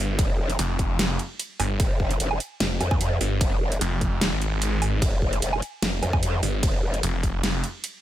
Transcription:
0.00 G1
0.19 F1, kick, closed hi-hat, ride
0.50 closed hi-hat
0.59 F1, closed hi-hat, ride
0.79 kick, closed hi-hat
0.99 F1, snare, closed hi-hat, ride
1.19 closed hi-hat
1.40 closed hi-hat, ride
1.60 G1, open hi-hat, low woodblock
1.80 F1, kick, closed hi-hat, ride
2.00 kick
2.11 closed hi-hat
2.20 F1, closed hi-hat, ride
2.31 low woodblock
2.40 closed hi-hat
2.60 F1, snare, closed hi-hat, ride
2.80 F2, closed hi-hat, low woodblock
2.91 kick, low woodblock
3.01 closed hi-hat, ride
3.21 G1, open hi-hat
3.41 F1, kick, closed hi-hat, ride
3.72 closed hi-hat
3.81 F1, closed hi-hat, ride
4.01 kick, closed hi-hat
4.21 D#1, snare, closed hi-hat, ride
4.32 G#1
4.42 closed hi-hat
4.62 closed hi-hat, ride
4.82 open hi-hat, low woodblock
5.02 F1, kick, closed hi-hat, ride
5.22 kick
5.33 closed hi-hat
5.42 F1, closed hi-hat, ride
5.53 low woodblock
5.62 closed hi-hat
5.82 F1, snare, closed hi-hat, ride
6.03 F2, closed hi-hat, low woodblock
6.13 kick, low woodblock
6.23 closed hi-hat, ride
6.43 G1, open hi-hat
6.63 F1, kick, closed hi-hat, ride
6.94 closed hi-hat
7.03 F1, closed hi-hat, ride
7.23 kick, closed hi-hat
7.43 F1, snare, closed hi-hat, ride
7.64 closed hi-hat
7.84 closed hi-hat, ride

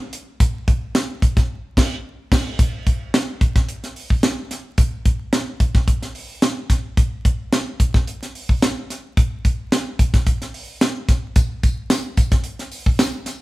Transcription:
0.13 closed hi-hat
0.40 kick, closed hi-hat
0.68 kick, closed hi-hat
0.95 snare, closed hi-hat
1.22 kick, closed hi-hat
1.37 kick, snare, closed hi-hat
1.77 kick, snare, crash
2.32 kick, snare, crash
2.59 kick, closed hi-hat
2.87 kick, closed hi-hat
3.14 snare, closed hi-hat
3.41 kick, closed hi-hat
3.56 kick, snare, closed hi-hat
3.69 closed hi-hat
3.84 snare, closed hi-hat
3.96 open hi-hat
4.10 kick
4.23 snare, closed hi-hat
4.51 snare, closed hi-hat
4.78 kick, closed hi-hat
5.06 kick, closed hi-hat
5.33 snare, closed hi-hat
5.60 kick, closed hi-hat
5.75 kick, snare
5.88 kick, closed hi-hat
6.02 snare, closed hi-hat
6.15 open hi-hat
6.42 snare, closed hi-hat
6.70 kick, snare, closed hi-hat
6.97 kick, closed hi-hat
7.25 kick, closed hi-hat
7.52 snare, closed hi-hat
7.80 kick, closed hi-hat
7.94 kick, snare
8.07 closed hi-hat
8.23 snare, closed hi-hat
8.35 open hi-hat
8.49 kick
8.62 snare, closed hi-hat
8.90 snare, closed hi-hat
9.17 kick, closed hi-hat
9.45 kick, closed hi-hat
9.72 snare, closed hi-hat
9.99 kick, closed hi-hat
10.14 kick, snare, closed hi-hat
10.27 kick, closed hi-hat
10.42 snare, closed hi-hat
10.54 open hi-hat
10.81 snare, closed hi-hat
11.09 kick, snare, closed hi-hat
11.36 kick, closed hi-hat, tambourine
11.63 kick, closed hi-hat, tambourine
11.90 snare, closed hi-hat, tambourine
12.17 kick, closed hi-hat, tambourine
12.32 kick, snare, closed hi-hat
12.44 closed hi-hat
12.59 snare, closed hi-hat
12.72 open hi-hat, tambourine
12.86 kick
12.99 snare, closed hi-hat, tambourine
13.26 snare, closed hi-hat, tambourine

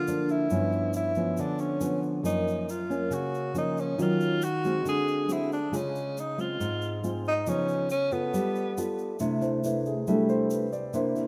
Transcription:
Already playing: D3 F4
0.07 F3 A#3 D4, shaker
0.29 E4, shaker
0.50 G2 F3 B3 C#4, shaker
0.72 shaker
0.93 E4, shaker
1.15 F3 B3 C#4, shaker
1.37 D3 D4, shaker
1.59 C#4, shaker
1.80 F3 B3 C#4, shaker
2.03 shaker
2.23 F#2 F3 A#3 C#4 D#4, shaker
2.48 shaker
2.69 F4, shaker
2.90 A#3 C#4, shaker
3.10 C#3 F#4, shaker
3.34 shaker
3.54 F3 A#3 C#4 D#4, shaker
3.77 C#4, shaker
3.98 D#3 F#3 C#4 F4, shaker
4.02 F4
4.21 shaker
4.42 F#4, shaker
4.64 G#3 C4 F#4, shaker
4.85 D3 G#4, shaker
5.08 shaker
5.28 G#3 C4 F#4, shaker
5.33 E4
5.52 D4, shaker
5.72 C#3 G#3 F4, shaker
5.76 C#4
5.95 shaker
6.17 D#4, shaker
6.38 G#3 C4 F4, shaker
6.60 G#2, shaker
6.82 shaker
7.03 G#3 C4 F4, shaker
7.25 D#4, shaker
7.47 C#3 F3 B3 C#4 D#4, shaker
7.68 shaker
7.90 C#4, shaker
8.11 B3 F4 A4, shaker
8.34 G3, shaker
8.55 shaker
8.77 B3 F4 A4, shaker
8.98 shaker
9.19 C3 A3 D4 E4, shaker
9.41 C3 A3 E4 C5, shaker
9.64 A3 D4 E4 B4, shaker
9.86 G#4, shaker
10.07 G3 A3 D4 E4 A4, shaker
10.29 C5, shaker
10.50 B4, shaker
10.73 D5, shaker
10.94 C3 A#3 D4 E4 C5, shaker
11.15 C3 A#3 E4, shaker

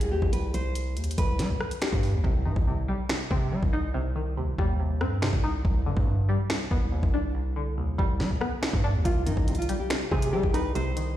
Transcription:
Already playing: C2
0.01 closed hi-hat
0.12 D#2 G4
0.22 C2, kick
0.33 B4, closed hi-hat
0.54 C5, closed hi-hat
0.75 closed hi-hat
0.97 D#2, closed hi-hat
1.04 closed hi-hat
1.11 closed hi-hat
1.18 C2 B4, kick, closed hi-hat
1.39 G3, snare, closed hi-hat
1.50 C2
1.60 cross-stick
1.71 closed hi-hat
1.82 G4, finger snap, snare, closed hi-hat
1.92 G2, kick
2.03 open hi-hat
2.14 D#2
2.24 C2 C3, kick
2.45 G2 D#3
2.56 C2, kick
2.67 C3
2.88 B1 G3
3.09 C3, finger snap, snare
3.31 C3 C4, kick
3.52 C3 G3
3.63 C2, kick
3.73 D#4
3.94 C3
4.16 D#3
4.37 D#2 C3
4.48 C2
4.58 D#2 G3, kick
4.80 C3
5.01 G2 C4, cross-stick
5.22 C3, finger snap, snare
5.33 C2, kick
5.44 D#4
5.65 C2, kick
5.86 G2 D3
5.97 G2, kick
6.07 C2
6.29 G3
6.50 C2, finger snap, snare
6.71 C2 B3, kick
6.92 C2 D#2
7.03 C2, kick
7.14 D4
7.35 C2
7.56 D3
7.77 C2 D#2
7.98 C2 G3, kick
8.20 C2 G3, snare
8.31 C2
8.41 B3, cross-stick
8.62 C2, finger snap, snare
8.73 G2, kick
8.84 D4
8.95 D#2
9.05 C2 C3 F4, kick, closed hi-hat
9.26 G2 D#3 D#4, closed hi-hat
9.37 C2, kick
9.48 C3, closed hi-hat
9.55 F4, closed hi-hat
9.62 closed hi-hat
9.69 B1 G3, closed hi-hat
9.80 G4
9.90 C3, finger snap, snare, closed hi-hat
10.11 C3 C4 G#4, kick
10.22 closed hi-hat
10.33 C3 G3 G4
10.43 C2, kick
10.54 D#4 B4, closed hi-hat
10.75 C3 C5, closed hi-hat
10.97 D#3, closed hi-hat

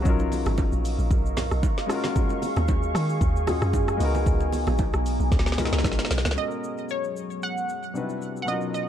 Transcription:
0.02 B1 F#3 C#4 D#4 A#4 D#5 F5 C#6, kick, low conga, shaker
0.08 F4 A#4
0.19 high bongo, shaker
0.32 open hi-hat, low bongo, shaker
0.46 G#1, cross-stick, low bongo, shaker
0.57 kick, high bongo, shaker
0.72 A#1, shaker
0.85 open hi-hat, shaker
0.99 A#1, shaker
1.11 B1, kick, low conga, shaker
1.26 shaker
1.37 snare, open hi-hat, low bongo, low conga, shaker
1.51 B1, cross-stick, shaker
1.63 kick, high bongo, shaker
1.78 snare, shaker
1.86 G#3 C#4 F4 G#4 G#5, cross-stick, open hi-hat, shaker
1.92 F#4 A#4
2.04 snare, low bongo, shaker
2.16 kick, low conga, shaker
2.30 high bongo, shaker
2.42 open hi-hat, low bongo, shaker
2.56 D#2, cross-stick, low bongo, shaker
2.68 kick, high bongo, shaker
2.83 shaker
2.95 D#3, cross-stick, open hi-hat, shaker
3.09 shaker
3.21 D#2, kick, low conga, shaker
3.36 shaker
3.46 G#3 C#4 F4 F#4 G#4, cross-stick, open hi-hat, low bongo, low conga, shaker
3.62 F#2, cross-stick, shaker
3.73 kick, high bongo, shaker
3.88 cross-stick, shaker
3.97 C#2 G#3 B3 D#4 A#5 D#6, open hi-hat, shaker
4.03 F#4 A#4
4.15 low bongo, shaker
4.26 C#2, kick, low conga, shaker
4.40 high bongo, shaker
4.52 open hi-hat, low bongo, shaker
4.67 A#1, cross-stick, low bongo, shaker
4.78 kick, high bongo, shaker
4.93 B1, cross-stick, shaker
5.06 open hi-hat, shaker
5.20 B1, shaker
5.32 C#2, kick, snare, low conga, shaker
5.39 snare
5.46 snare, shaker
5.52 snare
5.57 G#3 B3 D#4 F4 A#4, snare, open hi-hat, low bongo, low conga, shaker
5.65 F#4, snare
5.72 C#2, snare, shaker
5.79 snare
5.84 A#1, kick, snare, high bongo, shaker
5.92 snare
5.99 snare, shaker
6.05 snare
6.11 B1, snare, open hi-hat, shaker
6.18 snare
6.25 C#2, snare, low bongo, shaker
6.31 G#3, snare
6.36 F#3 C#4 F#4 G#4 D#5 F#5 A#5, shaker
6.41 A4
6.48 A#4, shaker
6.64 shaker
6.78 shaker
6.89 C#5, shaker
7.04 shaker
7.17 shaker
7.30 shaker
7.42 F#5, shaker
7.58 shaker
7.69 shaker
7.83 shaker
7.94 C3 G3 D4 D#4 F#4 B4, shaker
8.02 E4
8.09 shaker
8.22 shaker
8.37 shaker
8.42 B2 F#3 F#5
8.47 B3 C#4 D#4 F4 A#4 D#5, shaker
8.52 A#4
8.61 shaker
8.74 D#5, shaker

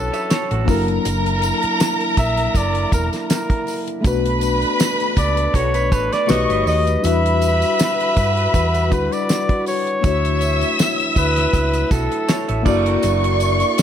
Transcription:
Already playing: E3 F#3 C#4 D4 E4 F#4 A4 C#5 A5
0.13 C#5 E5, closed hi-hat, tambourine
0.30 A4 C#5, snare, closed hi-hat, tambourine
0.51 A1 F#4 A4, closed hi-hat
0.65 F#1 D3 F#3 A#3 D4 E4 A#4 A#5, kick, open hi-hat
0.69 E4 A#4, tambourine
0.88 closed hi-hat
1.05 F#1, closed hi-hat, tambourine
1.26 closed hi-hat
1.42 closed hi-hat, tambourine
1.63 muted fingered electric bass stroke, closed hi-hat
1.80 snare, closed hi-hat, tambourine
2.01 closed hi-hat
2.17 A#1 E5, kick, closed hi-hat, tambourine
2.37 closed hi-hat
2.55 F#1 D5, kick, closed hi-hat, tambourine
2.75 closed hi-hat
2.92 E1 A#4, kick, closed hi-hat, tambourine
3.13 snare, closed hi-hat, tambourine
3.30 A#4, snare, closed hi-hat, tambourine
3.50 kick, closed hi-hat
3.67 open hi-hat, tambourine
3.87 closed hi-hat
4.01 B1 B2 A3 B3 D4 B4 B5, kick, closed hi-hat
4.05 F#4 B4, tambourine
4.25 closed hi-hat
4.41 closed hi-hat, tambourine
4.62 closed hi-hat
4.80 snare, closed hi-hat, tambourine
5.00 closed hi-hat
5.17 C#2 D5, kick, closed hi-hat, tambourine
5.37 closed hi-hat
5.54 B1 F#4 A4 C#5, kick, closed hi-hat, tambourine
5.74 B4, closed hi-hat, tambourine
5.92 A1 A4 B4 C#5, kick, closed hi-hat, tambourine
6.12 B4 D5, snare, closed hi-hat, tambourine
6.27 B1 D#3 G3 A3 D#4 F#4 G4 B4 C#5 D#5 C#6, snare, closed hi-hat, tambourine
6.49 G1 B4 D#5, closed hi-hat
6.66 D#2 D#5, open hi-hat, tambourine
6.87 closed hi-hat, tambourine
7.01 E2 D3 G3 D4 E4 F#4 B4 E5 B5, tambourine
7.05 F#4 B4, closed hi-hat
7.26 closed hi-hat
7.42 closed hi-hat, tambourine
7.62 closed hi-hat, tambourine
7.79 snare, closed hi-hat, tambourine
8.00 closed hi-hat
8.17 G2, kick, closed hi-hat, tambourine
8.37 closed hi-hat
8.54 E2, kick, closed hi-hat, tambourine
8.74 closed hi-hat, tambourine
8.90 D2 G3 D4 E4 F#4 B4, kick, closed hi-hat, tambourine
9.12 D5, closed hi-hat, tambourine
9.29 snare, closed hi-hat, tambourine
9.49 kick, closed hi-hat
9.66 C#5, open hi-hat, tambourine
9.87 closed hi-hat
10.01 D2 E3 F#3 A3 D4 E4 E5 E6, kick, closed hi-hat, tambourine
10.05 F#4 C#5
10.25 closed hi-hat
10.41 closed hi-hat, tambourine
10.61 closed hi-hat, tambourine
10.79 snare, closed hi-hat, tambourine
11.00 closed hi-hat
11.16 D2 B4, kick, closed hi-hat, tambourine
11.36 snare, closed hi-hat
11.53 C#2, kick, closed hi-hat, tambourine
11.73 closed hi-hat, tambourine
11.91 B1 F#4 A4, kick, closed hi-hat, tambourine
12.12 closed hi-hat
12.28 A4 C#5, snare, closed hi-hat, tambourine
12.48 A1 C#5 E5, closed hi-hat
12.63 F#1 D3 A#3 D4 E4 A#4 D5 C#6, kick, tambourine, crash
12.67 F#4 D5
12.86 F#4 A#4, closed hi-hat
13.03 F#1, closed hi-hat, tambourine
13.24 closed hi-hat
13.40 closed hi-hat, tambourine
13.60 closed hi-hat, tambourine
13.78 closed hi-hat, tambourine

